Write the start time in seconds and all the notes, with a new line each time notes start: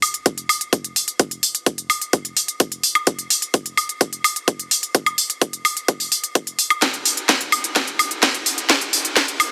0.02 open hi-hat, high woodblock
0.14 closed hi-hat
0.26 kick, closed hi-hat
0.38 closed hi-hat
0.49 open hi-hat, high woodblock
0.61 closed hi-hat
0.73 kick, closed hi-hat
0.84 closed hi-hat
0.96 open hi-hat
1.08 closed hi-hat
1.19 kick, closed hi-hat
1.31 closed hi-hat
1.43 open hi-hat
1.55 closed hi-hat
1.66 kick, closed hi-hat
1.78 closed hi-hat
1.90 open hi-hat, high woodblock
2.02 closed hi-hat
2.13 kick, closed hi-hat
2.25 closed hi-hat
2.37 open hi-hat
2.48 closed hi-hat
2.60 kick, closed hi-hat
2.72 closed hi-hat
2.83 open hi-hat
2.95 closed hi-hat, high woodblock
3.07 kick, closed hi-hat
3.19 closed hi-hat
3.30 open hi-hat
3.42 closed hi-hat
3.54 kick, closed hi-hat
3.66 closed hi-hat
3.77 open hi-hat, high woodblock
3.89 closed hi-hat
4.01 kick, closed hi-hat
4.13 closed hi-hat
4.24 open hi-hat, high woodblock
4.36 closed hi-hat
4.48 kick, closed hi-hat
4.59 closed hi-hat
4.71 open hi-hat
4.83 closed hi-hat
4.95 kick, closed hi-hat
5.06 closed hi-hat, high woodblock
5.18 open hi-hat
5.30 closed hi-hat
5.42 kick, closed hi-hat
5.53 closed hi-hat
5.65 open hi-hat, high woodblock
5.77 closed hi-hat
5.88 kick, closed hi-hat
6.00 open hi-hat
6.12 open hi-hat
6.24 closed hi-hat
6.35 kick, closed hi-hat
6.47 closed hi-hat
6.59 open hi-hat
6.70 closed hi-hat, high woodblock
6.82 kick, snare, closed hi-hat
6.94 closed hi-hat
7.05 open hi-hat
7.17 closed hi-hat
7.29 kick, snare, closed hi-hat
7.41 closed hi-hat
7.52 open hi-hat, high woodblock
7.64 closed hi-hat
7.76 kick, snare, closed hi-hat
7.88 closed hi-hat
7.99 open hi-hat, high woodblock
8.11 closed hi-hat
8.23 kick, snare, closed hi-hat
8.34 closed hi-hat
8.46 open hi-hat
8.58 closed hi-hat
8.70 kick, snare, closed hi-hat
8.81 closed hi-hat
8.93 open hi-hat
9.05 closed hi-hat
9.16 kick, snare, closed hi-hat
9.28 closed hi-hat
9.40 open hi-hat, high woodblock